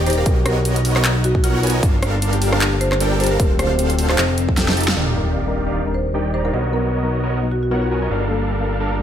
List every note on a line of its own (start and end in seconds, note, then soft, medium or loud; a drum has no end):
0.00 0.24 D#1 medium
0.00 0.25 D#3 medium
0.00 0.91 C4 loud
0.00 0.17 D4 loud
0.00 0.43 F4 loud
0.00 0.25 G4 loud
0.00 0.43 G4 loud
0.00 0.19 C5 medium
0.00 0.25 D5 medium
0.06 0.16 D#3 medium
0.06 0.16 D#4 medium
0.06 0.16 G4 medium
0.06 0.76 A#4 medium
0.06 0.15 C5 loud
0.06 0.16 D5 medium
0.06 0.16 A#5 medium
0.06 closed hi-hat soft
0.10 closed hi-hat medium
0.13 closed hi-hat medium
0.17 0.25 D#3 medium
0.17 0.32 D4 medium
0.17 0.25 D#4 medium
0.17 0.25 G4 medium
0.17 0.23 A#4 medium
0.17 0.25 D5 medium
0.17 0.25 F5 medium
0.26 1.81 B1 medium
0.26 1.81 B3 medium
0.26 0.93 B3 medium
0.26 1.81 D#4 medium
0.26 0.45 D#4 loud
0.26 0.93 F#4 medium
0.26 0.93 A#4 medium
0.26 0.33 A#4 medium
0.26 0.93 C#5 medium
0.26 0.93 D#5 medium
0.26 kick loud
0.26 closed hi-hat medium
0.37 1.15 F#4 loud
0.46 0.56 D#4 medium
0.46 0.59 A#4 medium
0.46 cross-stick medium
0.46 closed hi-hat medium
0.57 0.65 D#4 loud
0.65 0.95 D#4 loud
0.65 closed hi-hat medium
0.76 0.91 A#4 loud
0.76 closed hi-hat medium
0.85 1.61 B4 medium
0.85 open hi-hat loud
0.96 1.10 B3 medium
0.96 1.10 F#4 medium
0.96 1.10 A#4 medium
0.96 1.10 C#5 medium
0.96 1.10 D#5 loud
0.96 cross-stick medium
0.96 clap soft
1.04 1.24 D#4 loud
1.04 clap loud
1.04 closed hi-hat medium
1.15 2.00 F#4 loud
1.24 1.35 D#4 medium
1.24 1.31 F#4 medium
1.24 closed hi-hat medium
1.35 1.43 D#4 loud
1.35 1.41 F#4 medium
1.35 kick medium
1.44 1.59 B3 medium
1.44 1.74 D#4 loud
1.44 1.51 F4 loud
1.44 1.59 F#4 medium
1.44 1.59 A#4 medium
1.44 1.59 C#5 medium
1.44 1.59 F#5 loud
1.44 closed hi-hat medium
1.55 1.60 F4 medium
1.55 1.69 A#4 loud
1.63 1.72 B3 medium
1.63 1.72 F#4 medium
1.63 1.72 A#4 medium
1.63 3.46 B4 medium
1.63 1.72 C#5 medium
1.63 1.72 G#5 loud
1.63 closed hi-hat medium
1.67 closed hi-hat medium
1.70 closed hi-hat medium
1.74 1.82 B3 medium
1.74 1.89 D#4 medium
1.74 1.82 F#4 medium
1.74 1.82 A#4 medium
1.74 1.81 C#5 medium
1.74 1.82 D#5 medium
1.83 3.38 G1 medium
1.83 2.50 G3 medium
1.83 3.38 G3 medium
1.83 3.38 A#3 medium
1.83 2.50 D4 medium
1.83 2.02 D4 loud
1.83 4.16 F4 medium
1.83 2.50 A4 medium
1.83 2.50 A#4 medium
1.83 2.50 F5 medium
1.83 3.38 A5 medium
1.83 kick loud
1.83 closed hi-hat medium
1.94 2.72 F4 loud
2.02 2.13 D4 medium
2.02 cross-stick medium
2.02 closed hi-hat medium
2.13 2.22 D4 loud
2.22 2.52 D4 loud
2.22 closed hi-hat medium
2.33 3.11 G4 loud
2.33 closed hi-hat medium
2.42 3.20 A4 medium
2.42 open hi-hat loud
2.52 2.67 G3 medium
2.52 2.67 D4 medium
2.52 2.67 A4 medium
2.52 2.67 A#4 medium
2.52 2.67 F5 loud
2.52 cross-stick medium
2.61 2.81 D4 loud
2.61 clap loud
2.61 closed hi-hat medium
2.72 3.90 F4 loud
2.81 2.91 D4 medium
2.81 2.94 C5 loud
2.81 closed hi-hat medium
2.92 3.00 D4 loud
2.92 cross-stick medium
2.92 clap soft
3.00 3.16 G3 medium
3.00 3.30 D4 loud
3.00 3.16 D4 medium
3.00 3.16 A4 medium
3.00 3.16 A#4 medium
3.00 3.16 G5 loud
3.00 closed hi-hat medium
3.11 5.47 G4 loud
3.20 3.29 G3 medium
3.20 3.29 D4 medium
3.20 3.98 A4 medium
3.20 3.29 A4 medium
3.20 3.29 A#4 medium
3.20 3.29 C5 medium
3.20 3.29 A5 medium
3.20 closed hi-hat soft
3.24 closed hi-hat medium
3.27 closed hi-hat medium
3.31 3.38 G3 medium
3.31 3.50 D4 medium
3.31 3.38 D4 medium
3.31 3.38 A4 medium
3.31 3.37 A#4 medium
3.31 3.39 A#4 medium
3.31 3.38 F5 medium
3.39 4.16 D1 medium
3.39 4.17 D3 medium
3.39 4.07 D3 medium
3.39 4.17 A3 medium
3.39 4.95 C4 medium
3.39 3.59 C4 loud
3.39 4.07 D4 medium
3.39 4.07 A4 medium
3.39 3.47 A#4 medium
3.39 4.07 C5 medium
3.39 4.07 F5 medium
3.39 kick loud
3.39 closed hi-hat medium
3.51 4.35 D4 loud
3.59 3.70 C4 medium
3.59 3.66 C5 medium
3.59 cross-stick medium
3.59 closed hi-hat medium
3.70 3.79 C4 loud
3.70 3.76 C5 medium
3.79 4.09 C4 loud
3.79 closed hi-hat medium
3.90 4.68 F4 loud
3.90 closed hi-hat medium
3.99 4.76 A4 medium
3.99 open hi-hat loud
4.09 4.24 F3 medium
4.09 4.18 C4 medium
4.09 4.24 D#4 medium
4.09 4.24 G4 medium
4.09 4.24 A4 medium
4.09 4.15 C5 medium
4.09 4.24 F5 loud
4.09 cross-stick medium
4.09 clap soft
4.18 4.95 F1 medium
4.18 4.96 F3 medium
4.18 4.37 C4 loud
4.18 4.96 D#4 medium
4.18 4.96 A4 medium
4.18 4.25 C5 medium
4.18 clap loud
4.18 closed hi-hat medium
4.29 6.99 D#4 loud
4.38 4.48 C4 medium
4.38 closed hi-hat medium
4.48 4.57 C4 loud
4.48 kick medium
4.57 4.73 F3 medium
4.57 4.87 C4 loud
4.57 4.73 D#4 medium
4.57 4.73 G4 medium
4.57 4.73 A4 medium
4.57 4.73 G5 medium
4.57 snare medium
4.57 closed hi-hat medium
4.68 7.20 F4 loud
4.68 snare medium
4.77 4.86 F3 medium
4.77 4.86 D#4 medium
4.77 4.86 G4 medium
4.77 6.96 A4 medium
4.77 4.86 A4 medium
4.77 4.86 A5 medium
4.77 closed hi-hat soft
4.81 closed hi-hat medium
4.83 closed hi-hat medium
4.88 4.95 F3 medium
4.88 7.88 C4 medium
4.88 4.95 D#4 medium
4.88 4.95 G4 medium
4.88 4.95 A4 medium
4.88 4.95 F5 medium
4.88 snare medium
4.96 6.52 D#1 medium
4.96 5.64 D#3 medium
4.96 6.52 D#3 medium
4.96 5.64 D#4 medium
4.96 5.64 G4 medium
4.96 6.52 G4 medium
4.96 8.07 A#4 medium
4.96 5.64 D5 medium
4.96 6.52 D5 medium
4.96 5.64 F5 medium
4.96 sub drop medium
5.15 5.27 G3 medium
5.15 5.27 D4 medium
5.15 5.27 D#4 medium
5.15 5.28 A#4 medium
5.46 5.83 G3 medium
5.46 5.83 D4 medium
5.46 5.83 D#4 medium
5.46 5.84 A#4 medium
5.66 5.81 D#3 medium
5.66 5.81 D#4 medium
5.66 5.81 G4 medium
5.66 5.81 D5 medium
5.66 5.81 F5 medium
5.85 5.94 G3 medium
5.85 5.95 D4 medium
5.85 5.95 D#4 medium
5.85 5.95 A#4 medium
5.94 6.08 C5 medium
6.13 6.30 D#3 medium
6.13 6.25 G3 medium
6.13 6.25 D4 medium
6.13 6.30 D#4 medium
6.13 6.25 D#4 medium
6.13 6.30 G4 medium
6.13 6.26 A#4 medium
6.13 6.30 D5 medium
6.13 6.30 G5 medium
6.34 6.43 D#3 medium
6.34 6.43 D#4 medium
6.34 6.43 G4 medium
6.34 6.43 C5 medium
6.34 6.43 D5 medium
6.34 6.43 A#5 medium
6.44 6.52 D#3 medium
6.44 6.52 G3 medium
6.44 6.52 D4 medium
6.44 6.52 D#4 medium
6.44 6.52 G4 medium
6.44 6.50 A#4 medium
6.44 6.53 A#4 medium
6.44 6.52 D5 medium
6.44 6.52 F5 medium
6.53 8.09 B1 medium
6.53 7.20 B3 medium
6.53 8.09 B3 medium
6.53 8.09 D#4 medium
6.53 7.20 F#4 medium
6.53 7.21 A#4 medium
6.53 6.60 A#4 medium
6.53 7.20 C#5 medium
6.53 7.20 D#5 medium
6.72 6.84 F#3 medium
6.72 6.84 B3 medium
6.72 6.84 D#4 medium
6.72 6.87 A#4 medium
6.72 6.85 A#4 medium
7.03 7.40 F#3 medium
7.03 7.40 B3 medium
7.03 7.40 D#4 medium
7.03 7.41 A#4 loud
7.23 7.38 B3 medium
7.23 7.38 F#4 medium
7.23 7.38 A#4 medium
7.23 7.38 C#5 medium
7.23 7.38 D#5 medium
7.42 7.51 F#3 medium
7.42 7.52 B3 medium
7.42 7.52 D#4 medium
7.42 7.52 A#4 medium
7.52 7.58 F#4 medium
7.63 7.68 F#4 medium
7.70 7.82 F#3 medium
7.70 7.82 B3 medium
7.70 7.87 B3 medium
7.70 7.82 D#4 medium
7.70 7.78 F4 medium
7.70 7.87 F#4 medium
7.70 7.87 A#4 medium
7.70 7.83 A#4 medium
7.70 7.87 C#5 medium
7.70 7.87 F#5 medium
7.82 7.88 F4 medium
7.91 8.00 B3 medium
7.91 8.00 F#4 medium
7.91 8.00 A#4 medium
7.91 8.00 C#5 medium
7.91 8.00 G#5 medium
8.01 8.09 F#3 medium
8.01 8.09 B3 medium
8.01 8.09 D#4 medium
8.01 8.09 F#4 medium
8.01 8.09 A#4 medium
8.01 8.10 A#4 medium
8.01 8.09 C#5 medium
8.01 8.09 D#5 medium
8.10 9.03 G1 medium
8.10 9.03 G3 medium
8.10 8.77 G3 medium
8.10 9.03 A#3 medium
8.10 8.78 D4 medium
8.10 9.03 F4 medium
8.10 8.78 A4 medium
8.10 8.78 A#4 medium
8.10 8.78 F5 medium
8.10 9.03 A5 medium
8.29 8.40 G3 medium
8.29 8.41 A#3 medium
8.29 8.41 F4 medium
8.29 8.41 A4 medium
8.60 8.97 G3 medium
8.60 8.97 A#3 medium
8.60 8.97 F4 medium
8.60 8.98 A4 medium
8.80 8.95 G3 medium
8.80 8.95 D4 medium
8.80 8.95 A4 medium
8.80 8.95 A#4 medium
8.80 8.95 F5 medium
8.99 9.03 G3 medium
8.99 9.03 A#3 medium